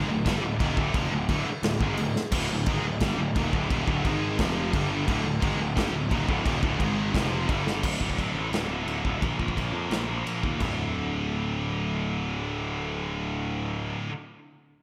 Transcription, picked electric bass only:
0.07 D1
0.26 G1
0.42 D1
0.60 D#1
0.77 D1
0.94 F1
1.12 D1
1.29 D1
1.47 muted picked electric bass stroke
1.63 D1
1.80 G#1
1.99 D1
2.32 D1
2.51 D1
2.67 G#1
2.85 D1
3.01 G1
3.18 D1
3.35 D#1
3.53 D1
3.71 D#1
3.87 D1
4.05 G#1
4.39 F1
4.73 G1
5.08 D1
5.26 D1
5.42 G#1
5.58 D1
5.77 G1
5.91 D1
6.11 D#1
6.29 D1
6.46 D#1
6.63 D1
6.79 G#1
7.14 F1
7.49 G1
7.84 D1
8.02 D1
8.18 D1
8.34 A1
8.52 D1
8.69 D1
8.86 D1
9.05 D1
9.23 A#1
9.40 A#1
9.57 A#1
9.72 F2
9.91 A#1
10.08 A#1
10.26 A#1
10.44 D#2
10.61 D1

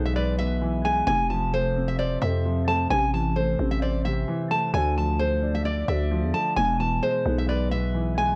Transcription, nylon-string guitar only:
0.06 E5
0.16 D5
0.39 E5
0.85 G#5
1.07 G#5
1.30 A5
1.54 C5
1.88 E5
1.99 D5
2.22 E5
2.68 A5
2.90 G#5
3.14 A5
3.36 C5
3.71 E5
3.82 D5
4.05 E5
4.51 A5
4.74 G#5
4.98 A5
5.19 C5
5.55 E5
5.65 D5
5.88 E5
6.34 A5
6.56 G#5
6.80 A5
7.03 C5
7.38 E5
7.49 D5
7.71 E5
8.18 G#5

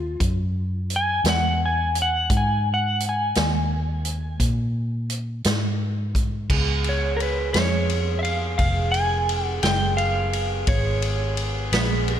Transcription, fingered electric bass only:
Already playing: D#2
0.20 F#2
1.24 E2
2.30 G#2
3.36 D#2
4.40 A#2
5.45 G#2
6.50 C#2
7.55 F2
8.59 F1
9.63 F#1
10.68 G#1
11.72 A#1

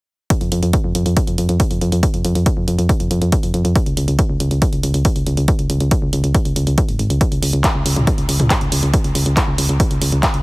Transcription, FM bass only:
0.41 F2
0.52 F2
0.63 F2
0.84 F2
0.95 F2
1.06 F2
1.27 F2
1.38 F2
1.49 F2
1.71 F2
1.82 F2
1.92 F2
2.14 F2
2.25 F2
2.35 F2
2.57 F2
2.68 F2
2.78 F2
3.00 F2
3.11 F2
3.22 F2
3.43 F2
3.54 F2
3.65 F2
3.86 C#2
3.97 C#2
4.08 C#2
4.29 C#2
4.40 C#2
4.51 C#2
4.73 C#2
4.83 C#2
4.94 C#2
5.16 C#2
5.27 C#2
5.37 C#2
5.59 C#2
5.70 C#2
5.81 C#2
6.02 C#2
6.13 C#2
6.24 C#2
6.45 C#2
6.56 C#2
6.67 C#2
6.89 G#1
6.99 G#1
7.10 C#2
7.32 C#2
7.42 C#2
7.53 C#2
7.75 C#2
7.86 C#2
7.96 C#2
8.18 C#2
8.29 C#2
8.40 C#2
8.61 C#2
8.72 C#2
8.83 C#2
9.04 C#2
9.15 C#2
9.26 C#2
9.48 C#2
9.58 C#2
9.69 C#2
9.91 C#2
10.02 C#2
10.12 C#2
10.34 C#2

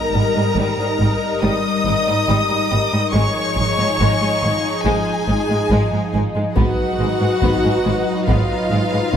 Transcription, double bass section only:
0.14 G#1
0.56 G#1
0.99 G#1
1.42 G#1
1.85 G#1
2.28 G#1
2.71 G#1
3.14 G#1
3.57 G#1
3.99 G#1
4.43 G#1
4.85 G#1
5.28 G#1
5.71 G#1
6.14 G#1
6.57 G#1
7.00 G#1
7.43 G#1
7.86 G#1
8.28 G#1
8.71 G#1

